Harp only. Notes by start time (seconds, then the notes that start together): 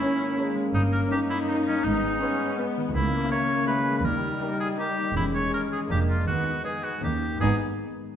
Already playing: G#2 A#3 G#4
0.01 C#4
0.19 A#4
0.38 C#4
0.55 G#3
0.74 G2
0.93 A#3
1.30 A#4
1.49 C#4
1.68 G3
1.85 G#2
2.04 G#3
2.22 B3
2.40 B4
2.58 B3
2.77 D#3
2.94 C#3
3.14 A#3
3.32 E4
3.51 A#4
3.68 E4
3.86 C#4
4.05 D#3
4.23 D#4
4.41 G4
4.60 A#4
4.78 G4
4.97 A#3
5.15 E3
5.34 C#4
5.53 G#4
5.71 C#4
5.90 F3
6.08 D4 A#4
6.27 D#3
6.46 D#4
6.64 G#4
6.83 B4
7.01 D#3
7.21 D#4 A#4
7.34 G#2 G#3
7.39 B3 D#4
7.44 G#4 D#5